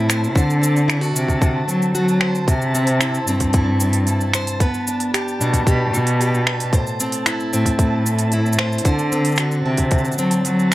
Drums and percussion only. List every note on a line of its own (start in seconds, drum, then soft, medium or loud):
0.10 finger snap medium
0.10 shaker medium
0.24 shaker soft
0.36 kick loud
0.36 shaker soft
0.50 shaker soft
0.63 shaker medium
0.76 shaker soft
0.90 finger snap medium
0.90 shaker soft
1.03 shaker soft
1.16 shaker medium
1.28 kick medium
1.28 shaker soft
1.42 kick loud
1.42 shaker soft
1.69 shaker medium
1.82 shaker soft
1.95 shaker soft
2.08 shaker soft
2.21 finger snap medium
2.35 shaker soft
2.48 kick loud
2.48 open hi-hat soft
2.48 shaker soft
2.62 shaker soft
2.75 shaker medium
2.87 open hi-hat soft
2.87 shaker soft
3.01 finger snap medium
3.01 open hi-hat soft
3.01 shaker soft
3.15 shaker soft
3.27 shaker medium
3.40 kick soft
3.40 open hi-hat soft
3.40 shaker soft
3.53 kick loud
3.53 open hi-hat soft
3.53 shaker soft
3.80 shaker medium
3.93 open hi-hat soft
3.93 shaker soft
4.07 open hi-hat soft
4.07 shaker soft
4.21 shaker soft
4.34 finger snap medium
4.34 shaker medium
4.47 open hi-hat medium
4.47 shaker soft
4.60 kick loud
4.60 open hi-hat soft
4.60 shaker soft
4.74 shaker soft
4.87 shaker medium
5.00 open hi-hat soft
5.00 shaker soft
5.14 finger snap medium
5.14 open hi-hat soft
5.14 shaker soft
5.28 shaker soft
5.41 shaker medium
5.53 kick medium
5.53 open hi-hat medium
5.53 shaker soft
5.67 kick loud
5.67 open hi-hat soft
5.67 shaker soft
5.94 shaker medium
6.07 open hi-hat soft
6.07 shaker soft
6.21 open hi-hat soft
6.21 shaker soft
6.35 shaker soft
6.47 finger snap medium
6.60 open hi-hat soft
6.60 shaker soft
6.73 kick loud
6.73 open hi-hat soft
6.73 shaker soft
6.87 shaker soft
7.00 shaker medium
7.12 open hi-hat medium
7.12 shaker soft
7.26 finger snap medium
7.26 open hi-hat soft
7.26 shaker soft
7.40 shaker soft
7.53 shaker medium
7.66 kick soft
7.66 open hi-hat medium
7.66 shaker soft
7.79 kick loud
7.79 open hi-hat soft
7.79 shaker soft
8.06 shaker medium
8.19 open hi-hat medium
8.19 shaker soft
8.32 open hi-hat soft
8.32 shaker soft
8.46 shaker soft
8.53 shaker medium
8.59 finger snap medium
8.72 shaker soft
8.78 open hi-hat medium
8.85 kick loud
8.85 open hi-hat soft
8.85 shaker soft
8.99 shaker soft
9.12 shaker medium
9.25 open hi-hat soft
9.25 shaker soft
9.29 shaker soft
9.32 shaker soft
9.36 finger snap medium
9.36 open hi-hat soft
9.36 shaker soft
9.38 shaker soft
9.51 shaker soft
9.77 kick soft
9.77 open hi-hat medium
9.77 shaker soft
9.91 kick medium
9.91 open hi-hat soft
9.91 shaker soft
9.98 shaker soft
10.05 shaker soft
10.12 shaker soft
10.18 shaker medium
10.31 open hi-hat medium
10.31 shaker soft
10.45 open hi-hat soft
10.45 shaker soft
10.59 shaker soft